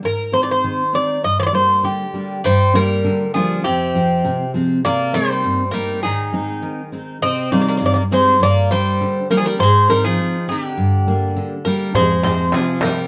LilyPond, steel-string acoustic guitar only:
\new Staff \with { instrumentName = "Steel-string acoustic guitar" } { \clef bass \time 2/4 \key g \phrygian \tempo 4 = 101 aes,8 <aes c' ees'>8 ees8 <aes c' ees'>8 | g,8 <g bes d'>8 d8 <g bes d'>8 | g,8 <g bes d'>8 d8 <g bes d'>8 | f,8 <f aes c'>8 c8 <f aes c'>8 |
c8 <bes c' ees'>8 g,8 <bes c' ees'>8 | aes,8 <aes c' ees'>8 ees8 <aes c' ees'>8 | c8 <g c' ees'>8 g,8 <g c' ees'>8 | g,8 <g bes d'>8 d8 <g bes d'>8 |
aes,8 <aes c' ees'>8 ees8 <aes c' ees'>8 | g,8 <g bes d'>8 d8 <g bes d'>8 | f,8 <f aes c'>8 c8 <f aes c'>8 | }